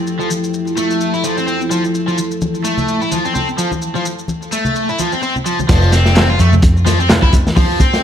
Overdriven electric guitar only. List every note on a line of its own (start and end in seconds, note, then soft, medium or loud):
0.20 0.29 F3 medium
0.77 1.13 A3 medium
1.13 1.23 E4 medium
1.24 1.36 F3 medium
1.37 1.46 C4 medium
1.47 1.59 C4 loud
1.71 1.83 F3 medium
2.08 2.17 F3 medium
2.65 3.00 A3 medium
3.01 3.10 E4 medium
3.11 3.23 F3 medium
3.25 3.34 C4 medium
3.35 3.47 C4 loud
3.59 3.70 F3 medium
3.96 4.04 F3 medium
4.52 4.88 A3 medium
4.89 4.98 E4 medium
4.99 5.11 F3 medium
5.13 5.22 C4 medium
5.23 5.34 C4 loud
5.46 5.58 F3 medium
5.69 5.92 F3 medium
5.93 6.28 C4 medium
6.30 6.38 F4 medium
6.40 6.52 A3 medium
6.86 6.98 F3 medium
7.00 7.09 C4 medium
7.23 7.32 E4 medium
7.57 7.79 F3 medium
7.80 8.03 C4 medium